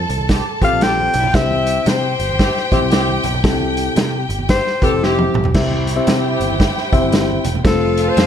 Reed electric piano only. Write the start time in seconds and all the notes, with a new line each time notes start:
0.62 C4 F4 G4 A4
1.34 C3 C4 E4 G4 C5
2.72 C4 E4 G4 C5
3.44 C3 C4 E4 G4 A4
4.82 C4 E4 G4 B4
4.89 C5
5.55 C3 C4 E4 G4 C5 E5
5.96 C4 E4 G4 C5 E5
6.93 C4 E4 G4 C5 E5
7.64 A3 C4 F4 A4 C5